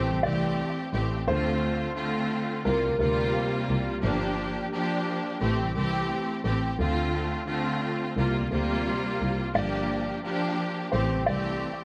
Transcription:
Already playing: string section E3 A3 C4 G4, upright piano C5
0.10 double bass C2
0.23 double bass C2, string section E3 A3 C4 G4, upright piano D5
0.92 double bass A1, string section E3 A3 C4 G4
1.26 double bass D2, string section D3 A3 C4 F4, upright piano C5
1.94 string section D3 A3 C4 F4
2.64 double bass C2, string section C3 G3 A#3 F4, upright piano A#4
2.85 double bass D2
2.99 double bass D2, string section C3 G3 A#3 F4, upright piano A#4
3.69 double bass C2
4.01 double bass G1, string section F3 A#3 D4 G4
4.72 string section F3 A#3 D4 G4
5.39 double bass A1, string section E3 A3 C4 G4
5.61 double bass C2
5.74 double bass C2, string section E3 A3 C4 G4
6.43 double bass A1, string section E3 A3 C4 G4
6.78 double bass D2, string section D3 A3 C4 F4
7.46 string section D3 A3 C4 F4
8.16 double bass C2, string section C3 G3 A#3 F4
8.37 double bass D2
8.50 double bass D2, string section C3 G3 A#3 F4
9.20 double bass C2
9.53 double bass G1, string section F3 A#3 D4 G4, upright piano D5
10.23 string section F3 A#3 D4 G4
10.91 double bass A1, string section E3 A3 C4 G4, upright piano C5
11.13 double bass C2
11.26 double bass C2, string section E3 A3 C4 G4, upright piano D5

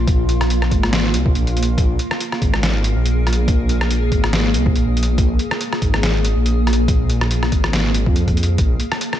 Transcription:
Already playing: detuned saw bass A#1, ambient pad A#3 F4
0.07 kick, closed hi-hat
0.29 closed hi-hat
0.41 cross-stick, closed hi-hat
0.50 closed hi-hat
0.62 cross-stick
0.71 detuned saw bass G#1, kick, closed hi-hat
0.83 cross-stick
0.93 snare, closed hi-hat
1.14 detuned saw bass C2, closed hi-hat
1.26 kick
1.35 detuned saw bass A#1, closed hi-hat
1.47 closed hi-hat
1.57 closed hi-hat
1.63 closed hi-hat
1.78 detuned saw bass A#1, ambient pad G#4, kick, closed hi-hat
1.99 closed hi-hat
2.11 cross-stick
2.20 closed hi-hat
2.32 cross-stick
2.42 detuned saw bass G#1, kick, closed hi-hat
2.54 cross-stick
2.63 snare, closed hi-hat
2.84 closed hi-hat
2.96 detuned saw bass A#1
3.06 closed hi-hat
3.27 cross-stick, closed hi-hat
3.33 closed hi-hat
3.48 kick, closed hi-hat
3.69 closed hi-hat
3.81 cross-stick
3.91 closed hi-hat
4.12 detuned saw bass G#1, kick, closed hi-hat
4.24 cross-stick
4.33 snare, closed hi-hat
4.54 detuned saw bass C2, closed hi-hat
4.66 kick
4.75 detuned saw bass A#1, closed hi-hat
4.97 closed hi-hat
5.03 closed hi-hat
5.18 detuned saw bass A#1, kick, closed hi-hat
5.39 closed hi-hat
5.51 cross-stick
5.61 closed hi-hat
5.73 cross-stick
5.82 detuned saw bass G#1, kick, closed hi-hat
5.94 cross-stick
6.03 snare, closed hi-hat
6.25 closed hi-hat
6.36 detuned saw bass A#1
6.46 closed hi-hat
6.67 cross-stick, closed hi-hat
6.73 closed hi-hat
6.88 kick, closed hi-hat
7.10 closed hi-hat
7.21 cross-stick
7.31 closed hi-hat
7.43 cross-stick
7.52 detuned saw bass G#1, kick, closed hi-hat
7.64 cross-stick
7.73 detuned saw bass G#1, snare, closed hi-hat
7.94 closed hi-hat
8.06 detuned saw bass F2, kick
8.16 closed hi-hat
8.28 kick, closed hi-hat
8.37 closed hi-hat
8.43 closed hi-hat
8.58 detuned saw bass A#1, ambient pad A#3 F4, kick, closed hi-hat
8.80 closed hi-hat
8.92 cross-stick
9.01 closed hi-hat
9.13 cross-stick

